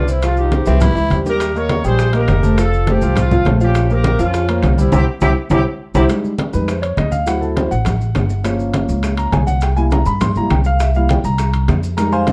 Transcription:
Already playing: upright bass C2
0.08 grand piano C4 C5, horn section C4 E4, maracas
0.22 grand piano F3 F4 F5, horn section C4 F4, high bongo, high conga, high timbale, maracas
0.37 horn section D#4 G4, high conga, maracas
0.52 grand piano C4 C5, high bongo, high conga, high timbale, maracas
0.66 upright bass C2, grand piano E3 E4 E5, baritone saxophone C4, high bongo, maracas
0.81 baritone saxophone E4, high bongo, high conga, low conga, high timbale, maracas
0.95 upright bass C#2, grand piano E3 E4 E5, high conga, maracas
1.10 upright bass D#2, grand piano G3 G4 C5, high conga, high timbale, maracas
1.25 grand piano G3 G4 G5, horn section G4 A#4, low bongo, high conga, maracas
1.40 high bongo, high conga, high timbale, maracas
1.55 grand piano A#3 A#4 D#5, horn section A#4 C#5, high conga, maracas
1.69 high bongo, high conga, high timbale, maracas
1.84 upright bass A#1, grand piano G3 G4 G5, horn section G#4 C5, high conga, maracas
1.99 high bongo, high conga, high timbale, maracas
2.13 grand piano A#3 A#4 D#5, horn section G4 A#4, high conga, high timbale, maracas
2.28 upright bass F1, high bongo, low bongo, high conga, high timbale, low timbale, maracas
2.43 grand piano A3 A4 C5, high conga, maracas
2.57 grand piano F3 F4 F5, horn section F4 A4, high bongo, high timbale, maracas
2.73 high conga, maracas
2.87 grand piano A3 A4 C5, horn section C4 G4, high bongo, high conga, high timbale, maracas
3.02 upright bass C2, grand piano F3 F4 F5, high bongo, maracas
3.16 horn section C4 F4, high bongo, high conga, low conga, high timbale, maracas
3.31 grand piano F3 F4 F5, high bongo, high conga, low conga, maracas
3.45 upright bass A#1, grand piano A3 A4 C5, high bongo, low bongo, high conga, high timbale, low timbale, maracas
3.60 grand piano F3 F4 F5, horn section C#4 G4, high bongo, high conga, maracas
3.75 high bongo, high conga, high timbale, maracas
3.90 grand piano A#3 A#4 C5, horn section G4 A#4, high conga, maracas
4.04 high bongo, high conga, high timbale, maracas
4.19 upright bass F2, grand piano F3 F4 F5, horn section C#4 F4, high conga, maracas
4.34 high bongo, high conga, high timbale, maracas
4.49 grand piano A#3 A#4 C5, high conga, high timbale, maracas
4.63 upright bass C2, high bongo, low bongo, high conga, high timbale, low timbale, maracas
4.78 grand piano G3 G4 C5, horn section C4 E4, high conga, maracas
4.92 upright bass C2, grand piano C4 E4 G4, horn section C4 E4 G4, low bongo, high conga, high timbale, maracas
5.21 upright bass C2, grand piano C4 E4 G4, horn section C4 E4 G4, low bongo, high conga, high timbale, maracas
5.50 upright bass C2, grand piano C4 E4 G4, horn section C4 E4 G4, low bongo, high conga, high timbale, maracas
5.94 upright bass C2, horn section C4 E4 G4, grand piano C4 E4 G4, low bongo, high conga, high timbale, maracas
6.09 grand piano G3 G#3 D#4, high bongo, high conga, high timbale, maracas
6.25 high conga, maracas
6.38 high bongo, high conga, high timbale, maracas
6.53 upright bass F2, grand piano G3 G#3 D#4 B4, high conga, maracas
6.68 grand piano C5, high bongo, high conga, high timbale, maracas
6.82 grand piano C#5, high conga, high timbale, maracas
6.97 upright bass D2, grand piano D#5, high bongo, low bongo, high conga, high timbale, maracas
7.12 grand piano F5, high conga, maracas
7.26 grand piano F#3 C4 E4 F#5, high bongo, high conga, high timbale, maracas
7.41 grand piano A4, high conga, maracas
7.56 grand piano C5, high bongo, high conga, high timbale, maracas
7.71 upright bass A1, grand piano F#5, high bongo, maracas
7.85 high bongo, high conga, low conga, high timbale, maracas
8.00 high bongo, high conga, maracas
8.15 upright bass G1, high bongo, low bongo, high conga, high timbale, low timbale, maracas
8.30 high bongo, high conga, maracas
8.44 grand piano F3 A#3 C#4, high bongo, high conga, high timbale, maracas
8.59 high conga, maracas
8.74 high bongo, high conga, high timbale, maracas
8.89 upright bass C#2, high conga, maracas
9.03 high bongo, high conga, high timbale, maracas
9.17 grand piano A#5, high conga, high timbale, maracas
9.32 upright bass C2, grand piano G#5, high bongo, low bongo, high conga, high timbale, low timbale, maracas
9.47 grand piano F#5, high conga, maracas
9.61 grand piano G5, high bongo, high conga, high timbale, maracas
9.76 grand piano G3 A#3 E4 G#5, high conga, maracas
9.91 grand piano A#5, high bongo, high conga, high timbale, maracas
10.06 upright bass G2, grand piano B5, high bongo, maracas
10.21 grand piano C6, high bongo, high conga, low conga, high timbale, maracas
10.35 upright bass C#2, grand piano G3 A#3 E4 A#5, high bongo, high conga, maracas
10.50 upright bass C2, grand piano G5, high bongo, low bongo, high conga, high timbale, maracas
10.64 grand piano F5, high bongo, high conga, maracas
10.80 grand piano E5, high bongo, high conga, high timbale, maracas
10.94 grand piano G3 A#3 E4 F5, high conga, maracas
11.09 grand piano G5, high bongo, high conga, high timbale, maracas
11.24 upright bass C2, grand piano A#5, high conga, maracas
11.38 high bongo, high conga, high timbale, maracas
11.54 high conga, high timbale, maracas
11.68 upright bass F2, high bongo, low bongo, high conga, high timbale, low timbale, maracas
11.83 maracas
11.97 grand piano G3 G#3 D#4 A#4 A#5, high bongo, high conga, high timbale, maracas
12.12 grand piano C5 F5 G#5 C6, high conga, maracas
12.27 high bongo, high conga, high timbale, maracas

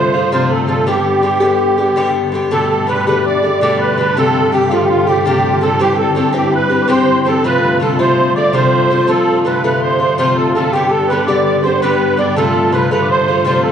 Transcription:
Already playing: string section G2 D3, bouzouki C3 F3 A3 F4, accordion C5
0.14 bouzouki F3 A3 F4
0.32 bouzouki C3 F3 A3 F4, accordion C5
0.50 accordion A4
0.67 bouzouki C3 F3 A3 F4, accordion A4
0.87 bouzouki G2 D3 B3 G4, accordion G4
1.22 bouzouki G2 D3 B3 G4
1.40 bouzouki G2 D3 B3 G4
1.78 bouzouki D3 B3 G4
1.96 bouzouki G2 D3 B3 G4
2.32 bouzouki G2 D3 B3 G4
2.51 string section G2 D3, bouzouki B2 D3 A3 G4, accordion A4, tin whistle A5
2.70 accordion A4, tin whistle A5
2.87 bouzouki B2 D3 A3 G4, accordion B4, tin whistle B5
3.06 bouzouki B2 D3 A3 G4, accordion B4, tin whistle B5
3.25 accordion D5, tin whistle D6
3.43 bouzouki D3 A3 G4
3.61 bouzouki B2 D3 A3 G4, accordion D5, tin whistle D6
3.79 accordion B4, tin whistle B5
3.93 tin whistle B5 C6
3.98 bouzouki B2 D3 A3 G4, accordion B4
4.15 bouzouki C3 F3 A3 G4, accordion A4, tin whistle A5
4.33 tin whistle A5
4.45 tin whistle A5
4.51 bouzouki C3 F3 A3 G4, accordion G4, tin whistle G5
4.68 bouzouki A3 G4, tin whistle F5
4.72 bouzouki C3 F3, accordion F4
4.84 accordion G4, tin whistle F5
4.89 accordion F4
5.05 bouzouki A3 G4, accordion G4, tin whistle G5
5.09 bouzouki F3
5.24 bouzouki C3 F3 A3 G4, accordion G4, tin whistle G5
5.44 tin whistle G5
5.61 bouzouki C3 F3 A3 G4, accordion A4, tin whistle A5
5.80 bouzouki G2 E3 C4 G4, accordion G4, tin whistle G5
5.99 accordion A4, tin whistle A5
6.15 bouzouki G2 E3 C4 G4, accordion A4, tin whistle A5
6.33 bouzouki G2 E3 C4 G4, accordion G4, tin whistle G5
6.53 accordion B4, tin whistle B5
6.69 bouzouki E3 C4 G4
6.82 tin whistle D6
6.88 bouzouki G2 E3 C4 G4, accordion C5, tin whistle C6
7.25 bouzouki G2 E3 C4 G4, accordion A4, tin whistle A5
7.44 bouzouki C3 F3 A3 F4, accordion B4, tin whistle B5
7.63 tin whistle B5
7.80 bouzouki C3 F3 A3 F4, accordion A4, tin whistle A5
7.99 bouzouki C3 F3 A3 F4, accordion C5, tin whistle C6
8.36 bouzouki F3 A3 F4, accordion D5, tin whistle D6
8.53 bouzouki C3 F3 A3 F4, accordion C5, tin whistle C6
8.90 bouzouki C3 F3 A3 F4
9.07 string section G2 D3, bouzouki C3 F3 A3 F4, accordion A4, tin whistle A5
9.45 bouzouki C3 F3 A3 F4, accordion B4
9.63 bouzouki C3 F3 A3 F4, accordion B4, tin whistle B5
9.82 accordion C5, tin whistle C6
10.00 bouzouki F3 A3 F4, accordion C5
10.17 bouzouki C3 F3 A3 F4, accordion C5, tin whistle C6
10.36 accordion A4, tin whistle A5
10.54 bouzouki C3 F3 A3, accordion A4, tin whistle A5
10.58 bouzouki F4
10.72 bouzouki G2 D3 B3 G4, accordion G4, tin whistle G5
10.90 accordion A4, tin whistle A5
11.08 bouzouki G2 D3, accordion B4, tin whistle B5
11.12 bouzouki B3 G4
11.26 bouzouki D3 B3 G4, accordion D5, tin whistle D6
11.30 bouzouki G2
11.44 accordion D5
11.63 bouzouki D3 B3 G4, accordion C5, tin whistle C6
11.81 bouzouki G2 D3 B3 G4, accordion B4, tin whistle B5
12.17 bouzouki G2 D3 B3 G4, accordion D5
12.29 tin whistle G5
12.36 bouzouki C3 F3 A3 F4, accordion A4, tin whistle A5
12.72 bouzouki C3 F3 A3 F4, accordion B4, tin whistle B5
12.91 bouzouki C3 F3 A3 F4, accordion B4, tin whistle B5
13.02 tin whistle D6
13.10 accordion C5, tin whistle C6
13.28 bouzouki F3 A3 F4
13.45 bouzouki C3 F3 A3 F4, accordion C5, tin whistle C6
13.63 accordion A4, tin whistle A5

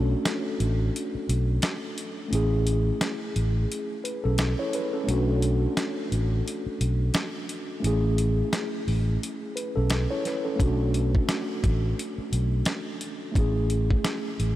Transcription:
Already playing: fingered electric bass B1, tine electric piano A3 C#4 D4 F#4 A4
0.25 snare, closed hi-hat
0.60 fingered electric bass A1, closed hi-hat
0.96 closed hi-hat
1.15 muted fingered electric bass stroke
1.29 fingered electric bass B1, closed hi-hat
1.62 snare, closed hi-hat
1.98 closed hi-hat
2.28 tine electric piano A3 C#4
2.33 fingered electric bass A1, tine electric piano E4 G#4, closed hi-hat
2.67 closed hi-hat
3.01 snare, closed hi-hat
3.36 fingered electric bass A1, closed hi-hat
3.72 closed hi-hat
4.04 tine electric piano B4, closed hi-hat
4.24 fingered electric bass B1, tine electric piano C#4 A4
4.38 snare, closed hi-hat
4.59 tine electric piano E4 C#5
4.73 tine electric piano B4, closed hi-hat
4.93 tine electric piano C#4 A4
5.04 tine electric piano A3 C#4
5.08 fingered electric bass B1, tine electric piano D4 F#4, closed hi-hat
5.42 closed hi-hat
5.77 snare, closed hi-hat
6.12 fingered electric bass A1, closed hi-hat
6.48 closed hi-hat
6.66 muted fingered electric bass stroke
6.81 fingered electric bass B1, closed hi-hat
7.14 snare, closed hi-hat
7.49 closed hi-hat
7.80 tine electric piano A3 C#4
7.84 fingered electric bass A1, tine electric piano E4 G#4, closed hi-hat
8.18 closed hi-hat
8.53 snare, closed hi-hat
8.88 fingered electric bass A1, open hi-hat
9.23 closed hi-hat
9.56 tine electric piano B4, closed hi-hat
9.76 fingered electric bass B1, tine electric piano C#4 A4
9.90 snare, closed hi-hat
10.11 tine electric piano E4 C#5
10.25 tine electric piano B4, snare, closed hi-hat
10.45 tine electric piano C#4 A4
10.56 tine electric piano A3 C#4
10.60 fingered electric bass B1, tine electric piano D4 F#4, kick, closed hi-hat
10.94 closed hi-hat
11.15 kick
11.29 snare, closed hi-hat
11.64 fingered electric bass A1, kick, closed hi-hat
11.99 closed hi-hat
12.18 muted fingered electric bass stroke
12.33 fingered electric bass B1, closed hi-hat
12.65 snare, closed hi-hat
13.01 closed hi-hat
13.32 tine electric piano A3 C#4, kick
13.36 fingered electric bass A1, tine electric piano E4 G#4, closed hi-hat
13.70 closed hi-hat
13.91 kick
14.04 snare, closed hi-hat
14.40 fingered electric bass A1, closed hi-hat

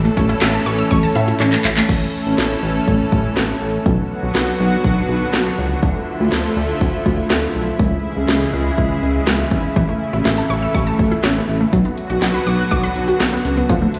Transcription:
Already playing: analog synth pad E3 A3 C#4 A4
0.05 synth arpeggio sound A3, closed hi-hat
0.17 analog synth bass A1, synth arpeggio sound C#4, kick, closed hi-hat
0.29 synth arpeggio sound E4, closed hi-hat
0.42 analog synth bass A1, synth arpeggio sound E5, snare, clap, closed hi-hat
0.54 synth arpeggio sound A5, closed hi-hat
0.66 analog synth bass A1, synth arpeggio sound C#6, closed hi-hat
0.79 synth arpeggio sound E6, closed hi-hat
0.91 analog synth bass A1, synth arpeggio sound C#6, kick, closed hi-hat
1.03 synth arpeggio sound A5, closed hi-hat
1.15 analog synth bass A2, synth arpeggio sound E5, closed hi-hat
1.28 synth arpeggio sound E4, closed hi-hat
1.40 analog synth bass A1, synth arpeggio sound C#4, clap, closed hi-hat
1.52 synth arpeggio sound A3, clap, closed hi-hat
1.65 analog synth bass A1, synth arpeggio sound E3, clap, closed hi-hat
1.77 synth arpeggio sound A3, clap, closed hi-hat
1.89 analog synth bass A1, analog synth pad E3 A3 C#4 A4, kick, crash
2.26 analog synth bass A1
2.38 analog synth bass A1, snare
2.63 analog synth bass A1
2.88 analog synth bass A1, kick
3.12 analog synth bass A1, kick
3.37 analog synth bass A1, snare
3.61 analog synth bass A1
3.86 analog synth bass B1, analog synth pad D3 F#3 B3 F#4, kick
4.23 analog synth bass B1
4.35 analog synth bass B1, snare
4.60 analog synth bass B1
4.84 analog synth bass B1, kick
5.09 analog synth bass B1
5.33 analog synth bass B1, snare
5.58 analog synth bass C#2
5.83 analog synth bass D2, analog synth pad F3 A3 E4, kick
6.20 analog synth bass D2
6.32 analog synth bass D2, snare
6.57 analog synth bass D2
6.81 analog synth bass D2, kick
7.06 analog synth bass D2, kick
7.30 analog synth bass D2, snare
7.55 analog synth bass B1
7.79 analog synth bass C#2, analog synth pad C#3 E3 G#3, kick
8.17 analog synth bass C#2
8.28 analog synth bass C#2, snare
8.53 analog synth bass C#2
8.78 analog synth bass C#2, kick
9.03 analog synth bass C#2
9.27 analog synth bass C#2, snare
9.51 analog synth bass G#1, kick
9.76 analog synth bass A1, synth arpeggio sound E3, analog synth pad E3 A3, kick
9.89 synth arpeggio sound A3
10.13 analog synth bass A1, synth arpeggio sound E4
10.25 analog synth bass A1, synth arpeggio sound E5, snare
10.38 synth arpeggio sound A5
10.50 analog synth bass A1, synth arpeggio sound C#6
10.62 synth arpeggio sound E6
10.74 analog synth bass A1, synth arpeggio sound C#6, kick
10.87 synth arpeggio sound A5
10.99 analog synth bass A1, kick
11.11 synth arpeggio sound E4
11.24 analog synth bass A1, synth arpeggio sound C#4, snare
11.36 synth arpeggio sound A3
11.48 analog synth bass A1
11.61 synth arpeggio sound A3
11.73 analog synth bass B1, analog synth pad D3 F#3 B3 F#4, synth arpeggio sound F#3, kick, closed hi-hat
11.85 synth arpeggio sound B3, closed hi-hat
11.97 closed hi-hat
12.10 analog synth bass B1, synth arpeggio sound F#4, closed hi-hat
12.22 analog synth bass B1, synth arpeggio sound F#5, snare, closed hi-hat
12.34 synth arpeggio sound B5, closed hi-hat
12.47 analog synth bass B1, synth arpeggio sound D6, closed hi-hat
12.59 synth arpeggio sound F#6, closed hi-hat
12.71 analog synth bass B1, synth arpeggio sound D6, kick, closed hi-hat
12.83 synth arpeggio sound B5, closed hi-hat
12.96 analog synth bass B1, closed hi-hat
13.08 synth arpeggio sound F#4, closed hi-hat
13.20 analog synth bass B1, synth arpeggio sound D4, snare, closed hi-hat
13.33 synth arpeggio sound B3, closed hi-hat
13.45 analog synth bass C#2, closed hi-hat
13.57 synth arpeggio sound B3, closed hi-hat
13.69 analog synth bass D2, synth arpeggio sound F3, analog synth pad F3 A3 E4, kick, closed hi-hat
13.82 synth arpeggio sound A3, closed hi-hat
13.94 closed hi-hat

